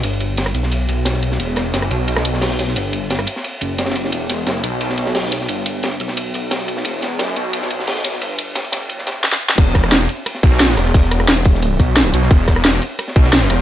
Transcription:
<<
  \new Staff \with { instrumentName = "Detuned saw bass" } { \clef bass \time 4/4 \key e \minor \tempo 4 = 176 g,,4. b,,4 b,,4. | e,,4 fis,,8 b,,4 b,,4. | g,,4. r4 fis,,4. | e,,4 fis,,8 b,,4 b,,4. |
g,,4. b,,4 b,,4. | e,,4 fis,,8 b,,4 b,,4. | g,,4. fis,,4. r4 | e,,4. r4 b,,4 e,,8~ |
e,,4 e,,4. b,,4 b,,8 | e,,4. r4 b,,4 e,,8 | }
  \new DrumStaff \with { instrumentName = "Drums" } \drummode { \time 4/4 <hh cymr>8 <hh cymr>8 <hh cymr sn>16 <cymr ss>16 <hh cymr>16 sn16 <hh cymr>8 <hh cymr>8 <hh cymr sn>16 sn16 <hh cymr>16 sn16 | <hh cymr>8 <hh cymr ss sn>8 <hh cymr sn>16 ss16 <hh cymr>8 <hh cymr>16 <ss sn>16 <hh cymr>16 sn16 <hh hho sn>16 sn16 <hh cymr sn>16 sn16 | <hh cymr>8 <hh cymr>8 <hh cymr sn>16 <cymr ss>16 <hh cymr>16 sn16 <hh cymr>8 <hh cymr>8 <hh cymr sn>16 <cymr sn>32 <cymr sn>32 <hh cymr>16 sn16 | <hh cymr>8 <hh cymr sn>8 <hh cymr sn>8 <hh cymr>8 <hh cymr>16 sn16 <hh cymr>16 sn16 <hh hho sn>16 sn16 <hh cymr sn>16 sn16 |
<hh cymr>8 <hh cymr>8 <hh cymr sn>16 cymr16 <hh cymr>16 sn16 <hh cymr>8 <hh cymr>8 <hh cymr sn>16 sn16 <hh cymr>16 sn16 | <hh cymr>8 <hh cymr sn>8 <hh cymr sn>8 <hh cymr>8 <hh cymr>16 sn16 <hh cymr>16 sn16 <hh hho sn>16 sn16 <hh cymr sn>16 sn16 | <hh cymr>8 <hh cymr>8 <hh cymr sn>16 cymr16 <hh cymr sn>8 <hh cymr>16 sn16 <hh cymr sn>8 sn16 sn8 sn16 | <cymc hh bd cymr>8 <hh bd cymr ss sn>16 ss16 <hh cymr sn>8 <hh cymr>8 <hh cymr ss>16 sn16 <hh bd cymr>16 sn16 <hh hho sn>16 sn16 <hh cymr ss sn>16 sn16 |
<hh bd cymr>8 <hh cymr ss>16 ss16 <hh cymr sn>16 cymr16 <hho bd cymr>16 sn16 <hh cymr>8 <hh bd cymr>8 <hh cymr sn>16 sn16 <hh cymr>16 sn16 | <hh bd cymr>8 <hh bd cymr ss sn>16 ss16 <hh cymr sn>8 <hh cymr>8 <hh cymr ss>16 sn16 <hh bd cymr>16 sn16 <hh hho sn>16 sn16 <hh cymr ss sn>8 | }
>>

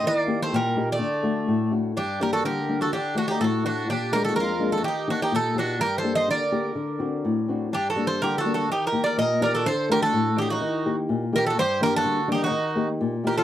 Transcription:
<<
  \new Staff \with { instrumentName = "Bouzouki" } { \time 2/4 \tempo 4 = 125 d''8. c''16 bes'8. d''16~ | d''4. r8 | g'8 bes'16 a'16 bes'8. a'16 | g'8 fis'16 g'16 a'8 fis'8 |
g'8 bes'16 a'16 bes'8. a'16 | g'8 fis'16 g'16 a'8 fis'8 | \tuplet 3/2 { bes'8 c''8 ees''8 } d''4~ | d''2 |
\tuplet 3/2 { g'8 a'8 c''8 bes'8 a'8 a'8 } | \tuplet 3/2 { g'8 bes'8 d''8 } ees''8 <bes' d''>16 a'16 | c''8 bes'16 a'8. g'16 fis'16~ | fis'8. r8. bes'16 a'16 |
c''8 bes'16 a'8. g'16 fis'16~ | fis'8. r8. bes'16 a'16 | }
  \new Staff \with { instrumentName = "Bouzouki" } { \time 2/4 bes8. a16 g8. a16~ | a4. r8 | d'8 g'16 fis'16 g'8. fis'16 | d'8 d'16 ees'16 fis'8 d'8 |
d'8 g'16 fis'16 f'8. fis'16 | ees'8 d'16 ees'16 ees'8 d'8 | \tuplet 3/2 { g'8 a'8 c''8 } bes'4~ | bes'2 |
\tuplet 3/2 { d'8 fis'8 a'8 g'8 fis'8 fis'8 } | \tuplet 3/2 { ees'8 g'8 bes'8 } bes'8 bes'16 fis'16 | a'8 g'16 fis'8. ees'16 ees'16~ | ees'8. r8. g'16 fis'16 |
g'8 g'16 fis'8. ees'16 ees'16~ | ees'8. r8. g'16 f'16 | }
  \new Staff \with { instrumentName = "Nylon-string guitar" } { \time 2/4 ees8 <bes ees' g'>8 bes,8 <bes ees' g'>8 | d8 <a d' fis'>8 a,8 <a d' fis'>8 | g,8 <g bes d'>8 d8 <g bes d'>8 | d8 <a d' fis'>8 a,8 <a d' fis'>8 |
bes,8 <aes bes d'>8 f,8 <aes bes d'>8 | ees8 <bes ees' g'>8 bes,8 <bes ees' g'>8 | g,8 <bes d' g'>8 d8 <bes d' g'>8 | d8 <c' d' fis'>8 a,8 <c' d' fis'>8 |
g,8 <g bes d'>8 d8 <g bes d'>8 | ees8 <bes ees' g'>8 bes,8 <bes ees' g'>8 | d8 <a d' fis'>8 a,8 <a d' fis'>8 | ees8 <bes ees' g'>8 bes,8 <bes ees' g'>8 |
g,8 <g bes d'>8 d8 <g bes d'>8 | ees8 <bes ees' g'>8 bes,8 <bes ees' g'>8 | }
>>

